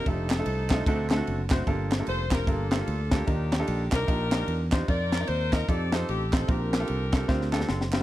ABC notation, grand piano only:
X:1
M:4/4
L:1/16
Q:"Swing" 1/4=149
K:Bb
V:1 name="Grand piano"
[A,DEFG]2 z [A,DEFA]2 z [A,DEFA] z [A,CD^FA] z [A,CD=F^FA]3 z [A,CDFc] z | [B,DFGA]2 z [B,DFGA]2 z [B,DFGc] z [B,DFGB] z [B,DFGA]3 z [B,DFGA] z | [DEFGB]2 z [DEFGA]2 z [DEFGB] z [DEFGB] z [DEFGB]3 z [DEFGc] z | [CEFBc]2 z [CEFBd]2 z [CEFBe] z [CEFGA] z [CEFGA]3 z [CEFGc] z |
[CDFGB]2 z [CDFGA]2 z [CDFGA] z [CDFGc] z [CDFGA]3 z [CDFGc] z |]
V:2 name="Grand piano" clef=bass
z8 D,6 z2 | G,,6 z8 z2 | E,6 z8 z2 | z16 |
B,,6 z4 g2 c'4 |]